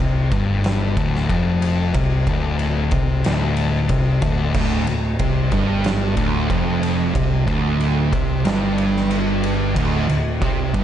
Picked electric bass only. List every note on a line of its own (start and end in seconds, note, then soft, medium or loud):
0.00 0.30 C2 loud
0.31 0.93 G1 loud
0.96 1.27 D1 loud
1.29 1.90 F1 loud
1.95 2.25 C2 loud
2.27 2.88 D1 loud
2.92 3.22 C2 loud
3.25 3.86 D1 loud
3.89 4.20 C2 loud
4.22 4.52 D1 loud
4.55 4.85 D1 loud
4.87 5.17 D1 loud
5.19 5.50 C2 loud
5.52 6.13 G1 loud
6.17 6.48 D1 loud
6.50 7.11 F1 loud
7.15 7.45 C2 loud
7.48 8.09 D1 loud
8.12 8.43 C2 loud
8.46 9.73 G1 loud
9.76 10.07 D1 loud
10.09 10.40 D1 medium
10.42 10.72 C2 loud
10.74 10.84 G1 loud